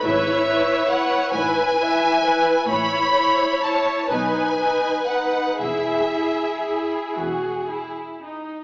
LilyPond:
<<
  \new Staff \with { instrumentName = "Violin section" } { \time 6/8 \key e \major \tempo 4. = 42 e''4 fis''8 gis''4. | b''4 a''8 gis''4 fis''8 | e''4. r4. | }
  \new Staff \with { instrumentName = "Violin section" } { \time 6/8 \key e \major cis''4. b'8 e''8 b'8 | cis''4. b'4. | gis'2~ gis'16 r8. | }
  \new Staff \with { instrumentName = "Viola section" } { \time 6/8 \key e \major <e' b'>8 <e' b'>8 <e' b'>8 <e' b'>8 <e' b'>8 <e' b'>8 | <e' cis''>8 <e' cis''>8 <e' cis''>8 <dis' b'>8 <dis' b'>8 <dis' b'>8 | <e' gis'>8 <e' gis'>8 <e' gis'>8 fis'8 e'8 dis'8 | }
  \new Staff \with { instrumentName = "Cello section" } { \clef bass \time 6/8 \key e \major gis,4. gis,4. | a,4. b,4. | e,4. e,4. | }
  \new Staff \with { instrumentName = "Double bass section" } { \clef bass \time 6/8 \key e \major gis,,4. gis,,4. | a,,4. b,,4. | e,,4. e,,4. | }
>>